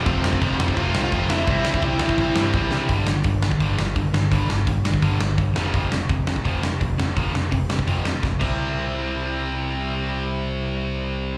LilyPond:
<<
  \new Staff \with { instrumentName = "Lead electric guitar" } { \time 4/4 \key c \major \tempo 4 = 169 <c' c''>2 <f' f''>8. <f' f''>8. <e' e''>8~ | <e' e''>2. r4 | r1 | r1 |
r1 | r1 | r1 | r1 | }
  \new Staff \with { instrumentName = "Distorted electric guitar" } { \time 4/4 \key c \major <f a c' f'>2.~ <f a c' f'>8 r8 | <c e g c' e'>1 | r1 | r1 |
r1 | r1 | r1 | r1 | }
  \new Staff \with { instrumentName = "Distorted electric guitar" } { \clef bass \time 4/4 \key c \major <f, c f>4 <f, c f>8 <f, c f>8 <f, c f>4 <f, c f>8 <f, c f>8 | <c g c'>4 <c g c'>8 <c g c'>8 <c g c'>4 <c g c'>8 <c g c'>8 | <g, d g>8 <g, d>8 <g, d>8 <g, d>8 <g, d g>8 <g, d>8 <g, d>8 <g, d>8 | <g, d g>8 <g, d>8 <g, d>8 <g, d>8 <g, d g>8 <g, d>8 <g, d>8 <f, c f>8 |
<f, c f>8 <f, c>8 <f, c>8 <f, c>8 <f, c f>8 <f, c>8 <f, c>8 <f, c>8 | <f, c f>8 <f, c>8 <f, c>8 <f, c>8 <f, c f>8 <f, c>8 <f, c>8 <c g c'>8~ | <c g c'>1~ | <c g c'>1 | }
  \new Staff \with { instrumentName = "Overdriven electric guitar" } { \clef bass \time 4/4 \key c \major <f, c f a c'>4 <f, c f a c'>8 <f, c f a c'>8 <f, c f a c'>4 <f, c f a c'>8 <f, c f a c'>8 | <c g c' e'>4 <c g c' e'>8 <c g c' e'>8 <c g c' e'>4 <c g c' e'>8 <c g c' e'>8 | <g, d g>8 <g, d>8 <g, d>8 <g, d>8 <g, d g>8 <g, d>8 <g, d>8 <g, d>8 | <g, d g>8 <g, d>8 <g, d>8 <g, d>8 <g, d g>8 <g, d>8 <g, d>8 <f, c f>8 |
<f, c f>8 <f, c>8 <f, c>8 <f, c>8 <f, c f>8 <f, c>8 <f, c>8 <f, c>8 | <f, c f>8 <f, c>8 <f, c>8 <f, c>8 <f, c f>8 <f, c>8 <f, c>8 <c g c' e'>8~ | <c g c' e'>1~ | <c g c' e'>1 | }
  \new Staff \with { instrumentName = "Picked electric bass" } { \clef bass \time 4/4 \key c \major f,,8 f,,8 f,,8 f,,8 f,,8 c,8 f,,8 f,,8 | c,8 c,8 c,8 c,8 c,8 g,8 c,8 c,8 | g,,8 g,,8 g,,4 g,,8 g,,8 g,,8 g,,8 | g,,8 g,,8 g,,4 g,,8 g,,8 g,,8 f,,8 |
f,,8 f,,8 f,,4 f,,8 f,,8 f,,8 f,,8 | f,,8 f,,8 f,,4 f,,8 f,,8 f,,8 c,8~ | c,1~ | c,1 | }
  \new DrumStaff \with { instrumentName = "Drums" } \drummode { \time 4/4 <cymc bd>8 sn16 bd16 <cymc bd>8 sn16 bd16 <cymc bd>8 sn8 <cymc bd>8 sn8 | <cymc bd>8 sn16 bd16 <cymc bd>8 sn16 bd16 <cymc bd>8 sn8 <cymc bd>8 sn8 | <hho bd>8 sn8 <hho bd>8 sn16 bd16 <hho bd>8 sn8 <hho bd>8 sn8 | <hho bd>8 sn8 <hho bd>8 sn16 bd16 <hho bd>8 sn8 <hho bd>8 sn8 |
<hho bd>8 sn8 <hho bd>8 sn16 bd16 <hho bd>8 sn8 <hho bd>8 sn8 | <hho bd>8 sn8 <hho bd>8 sn16 bd16 <hho bd>8 sn8 <bd sn>8 <cymc bd>8 | r4 r4 r4 r4 | r4 r4 r4 r4 | }
>>